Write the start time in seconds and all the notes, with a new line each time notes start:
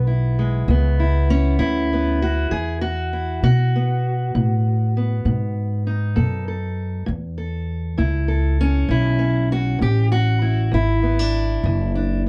Already playing: B1 E2 B3
0.07 E4
0.39 G#3
0.68 C#2 E2 B3
1.00 E4
1.30 C#4
1.59 D2 E2 E4
1.93 B3
2.22 F#4
2.51 E2 G#4
2.81 F#4
3.13 E4
3.43 B2 F#4
3.76 B3
4.35 A2 B2
4.97 B3
5.25 G#2 B2
5.87 D#4
6.16 F#2 B2 A4
6.48 A4
7.06 E2 A2
7.38 A4
7.98 C#2 A2 E4
8.28 A4
8.61 C#4
8.89 B1 A2 E4
9.19 C#4
9.52 F#4
9.79 A1 A2 G4
10.12 F#4
10.42 E4
10.72 G#1 E2 E4
11.03 B3
11.19 D4
11.64 F#1 E2
11.95 D4